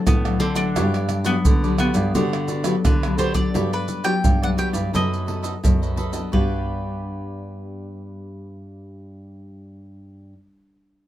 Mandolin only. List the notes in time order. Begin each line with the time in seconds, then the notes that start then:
0.07 B3
0.40 C4
0.56 D4
1.26 B3
1.80 B3
2.85 B4
3.19 C5
3.35 D5
3.73 B4
4.04 G5
4.43 F#5
4.59 G5
4.95 D#5
6.33 B4